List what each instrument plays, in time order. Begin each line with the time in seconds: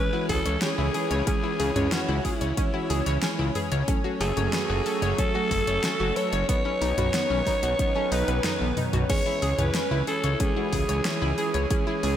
Already playing: fm electric piano E3 G#3 C#4 C#5, analog synth pad E3 C#4, synth arpeggio sound C#4, alto saxophone B4
0.13 fm electric piano E3 G#3 C#4 F#4, synth arpeggio sound E4
0.29 analog synth bass C#2, synth arpeggio sound G#4, alto saxophone A4, kick, open hi-hat
0.46 analog synth bass C#2, fm electric piano E3 G#3 C#4 C#5, synth arpeggio sound C#5, closed hi-hat
0.62 fm electric piano E3 G#3 C#4 G#4, synth arpeggio sound C#4, alto saxophone G#4, snare, closed hi-hat
0.78 analog synth bass C#2, synth arpeggio sound E4
0.94 fm electric piano E3 G#3 C#4 B4, synth arpeggio sound G#4, open hi-hat
1.11 analog synth bass C#2, synth arpeggio sound C#5, closed hi-hat
1.27 fm electric piano E3 G#3 C#4 G#4, synth arpeggio sound C#4, alto saxophone G#4, kick, closed hi-hat
1.43 fm electric piano E3 G#3 C#4 G#4, synth arpeggio sound E4
1.60 analog synth bass C#2, synth arpeggio sound G#4, open hi-hat
1.76 analog synth bass C#2, fm electric piano E3 G#3 C#4 G#4, synth arpeggio sound C#5, closed hi-hat, mid tom
1.92 fm electric piano E3 G#3 C#4 B4, synth arpeggio sound C#4, alto saxophone F#4, snare, closed hi-hat
2.08 analog synth bass C#2, synth arpeggio sound E4
2.25 fm electric piano E3 G#3 C#4 G#4, alto saxophone E4, synth arpeggio sound G#4, kick, open hi-hat
2.41 analog synth bass C#2, synth arpeggio sound C#5, closed hi-hat
2.57 fm electric piano E3 G#3 C#4 C#5, synth arpeggio sound C#4, alto saxophone E4, kick, closed hi-hat
2.74 fm electric piano E3 G#3 C#4 F#4, synth arpeggio sound E4
2.90 analog synth bass C#2, synth arpeggio sound G#4, open hi-hat
3.06 analog synth bass C#2, fm electric piano E3 G#3 C#4 C#5, synth arpeggio sound C#5, closed hi-hat
3.23 fm electric piano E3 G#3 C#4 G#4, synth arpeggio sound C#4, snare, closed hi-hat
3.39 analog synth bass C#2, synth arpeggio sound E4
3.55 fm electric piano E3 G#3 C#4 B4, synth arpeggio sound G#4, mid tom, open hi-hat
3.72 analog synth bass C#2, synth arpeggio sound C#5, closed hi-hat
3.88 fm electric piano F#3 A3 C#4 A4, analog synth pad F#3 A3, synth arpeggio sound C#4, kick, closed hi-hat
4.04 fm electric piano F#3 A3 C#4 A4, synth arpeggio sound F#4
4.21 analog synth bass F#1, alto saxophone G#4, synth arpeggio sound A4, open hi-hat
4.37 analog synth bass F#1, fm electric piano F#3 A3 C#4 A4, synth arpeggio sound C#5, closed hi-hat, mid tom
4.53 fm electric piano F#3 A3 C#4 B4, synth arpeggio sound C#4, snare, closed hi-hat
4.70 analog synth bass F#1, synth arpeggio sound F#4
4.86 fm electric piano F#3 A3 C#4 A4, synth arpeggio sound A4, open hi-hat
5.02 analog synth bass F#1, synth arpeggio sound C#5, closed hi-hat
5.18 fm electric piano F#3 A3 C#4 C#5, synth arpeggio sound C#4, alto saxophone A4, kick, closed hi-hat
5.35 fm electric piano F#3 A3 C#4 G#4, synth arpeggio sound F#4
5.51 analog synth bass F#1, synth arpeggio sound A4, kick, open hi-hat
5.67 analog synth bass F#1, fm electric piano F#3 A3 C#4 C#5, synth arpeggio sound C#5, closed hi-hat
5.84 fm electric piano F#3 A3 C#4 A4, synth arpeggio sound C#4, snare, closed hi-hat
6.00 analog synth bass F#1, synth arpeggio sound F#4
6.16 fm electric piano F#3 A3 C#4 B4, synth arpeggio sound A4, alto saxophone C#5, open hi-hat
6.33 analog synth bass F#1, synth arpeggio sound C#5, closed hi-hat
6.49 analog synth pad D#3 B3, fm electric piano F#3 C#4 D#4 B4, synth arpeggio sound B3, alto saxophone C#5, kick, closed hi-hat
6.65 fm electric piano F#3 C#4 D#4 B4, synth arpeggio sound C#4
6.82 analog synth bass B1, synth arpeggio sound D#4, open hi-hat
6.98 analog synth bass B1, fm electric piano F#3 C#4 D#4 B4, synth arpeggio sound F#4, closed hi-hat, mid tom
7.14 fm electric piano F#3 C#4 D#4 C#5, synth arpeggio sound B3, snare, closed hi-hat
7.30 analog synth bass B1, synth arpeggio sound C#4
7.47 fm electric piano F#3 C#4 D#4 B4, synth arpeggio sound D#4, kick, snare, open hi-hat
7.63 analog synth bass B1, synth arpeggio sound F#4, closed hi-hat
7.79 fm electric piano F#3 C#4 D#4 D#5, synth arpeggio sound B3, kick, closed hi-hat
7.95 fm electric piano F#3 C#4 D#4 A4, synth arpeggio sound C#4
8.12 analog synth bass B1, synth arpeggio sound D#4, alto saxophone B4, open hi-hat
8.28 analog synth bass B1, fm electric piano F#3 C#4 D#4 B4, synth arpeggio sound B4, closed hi-hat
8.44 fm electric piano F#3 C#4 D#4 A4, synth arpeggio sound D#4, alto saxophone B4, snare, closed hi-hat, mid tom, high tom
8.61 analog synth bass B1, synth arpeggio sound B3, high tom
8.77 fm electric piano F#3 C#4 D#4 B4, synth arpeggio sound D#4, mid tom, open hi-hat
8.93 analog synth bass B1, synth arpeggio sound F#4, closed hi-hat, mid tom
9.10 fm electric piano E3 G#3 C#4 G#4, analog synth pad E3 C#4, synth arpeggio sound C#4, alto saxophone C#5, kick, closed hi-hat, crash
9.26 fm electric piano E3 G#3 C#4 G#4, synth arpeggio sound E4
9.42 analog synth bass C#2, synth arpeggio sound G#4, open hi-hat
9.59 analog synth bass C#2, fm electric piano E3 G#3 C#4 G#4, alto saxophone B4, synth arpeggio sound C#5, closed hi-hat, mid tom
9.75 fm electric piano E3 G#3 C#4 B4, synth arpeggio sound C#4, snare, closed hi-hat
9.91 analog synth bass C#2, synth arpeggio sound E4
10.07 fm electric piano E3 G#3 C#4 G#4, synth arpeggio sound G#4, alto saxophone A4, open hi-hat
10.24 analog synth bass C#2, synth arpeggio sound C#5, closed hi-hat
10.40 fm electric piano E3 G#3 C#4 C#5, synth arpeggio sound C#4, alto saxophone G#4, kick, closed hi-hat
10.56 fm electric piano E3 G#3 C#4 F#4, synth arpeggio sound E4
10.73 analog synth bass C#2, synth arpeggio sound G#4, kick, open hi-hat
10.89 analog synth bass C#2, fm electric piano E3 G#3 C#4 C#5, synth arpeggio sound C#5, closed hi-hat
11.05 fm electric piano E3 G#3 C#4 G#4, synth arpeggio sound C#4, snare, closed hi-hat
11.22 analog synth bass C#2, synth arpeggio sound E4
11.38 fm electric piano E3 G#3 C#4 B4, synth arpeggio sound G#4, open hi-hat
11.54 analog synth bass C#2, synth arpeggio sound C#5, closed hi-hat
11.70 fm electric piano E3 G#3 C#4 G#4, analog synth pad F#3, synth arpeggio sound C#4, alto saxophone G#4, kick, closed hi-hat
11.87 fm electric piano E3 G#3 C#4 G#4, synth arpeggio sound E4
12.03 analog synth bass C#2, synth arpeggio sound G#4, open hi-hat